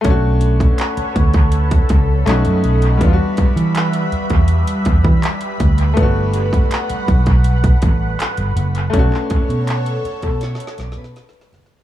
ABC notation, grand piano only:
X:1
M:4/4
L:1/8
Q:1/4=81
K:Bm
V:1 name="Grand piano"
[A,CDF]6 [A,C^DF]2 | [G,B,D^EF]8 | [A,B,DF]8 | [A,CDF]8 |]